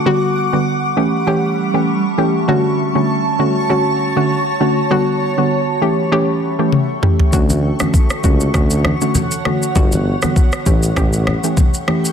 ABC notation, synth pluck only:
X:1
M:4/4
L:1/16
Q:"Swing 16ths" 1/4=99
K:D
V:1 name="Synth pluck"
[D,G,B,F]3 [D,G,B,F]3 [E,A,CG]2 [E,A,CG]3 [E,A,CG] z2 [E,A,CG] z | [D,A,CF]3 [D,A,CF]3 [D,A,CF]2 [D,A,CF]3 [D,A,CF] z2 [D,A,CF] z | [D,G,B,F]3 [D,G,B,F]3 [E,A,CG]2 [E,A,CG]3 [E,A,CG] z2 [E,A,CG] z | [D,A,CF]3 [D,A,CF]3 [D,A,CF]2 [D,A,CF]3 [D,A,CF] z2 [D,A,CF] z |
[D,G,B,F]3 [D,G,B,F]3 [E,A,CG]2 [E,A,CG]3 [E,A,CG] z2 [E,A,CG] z |]